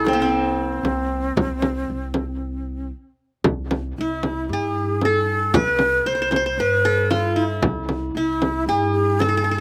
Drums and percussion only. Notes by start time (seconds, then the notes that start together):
0.07 frame drum
0.85 frame drum
1.37 frame drum
1.62 frame drum
2.14 frame drum
3.44 frame drum
3.71 frame drum
4.23 frame drum
5.01 frame drum
5.54 frame drum
5.79 frame drum
6.32 frame drum
7.11 frame drum
7.62 frame drum
7.89 frame drum
8.42 frame drum
9.20 frame drum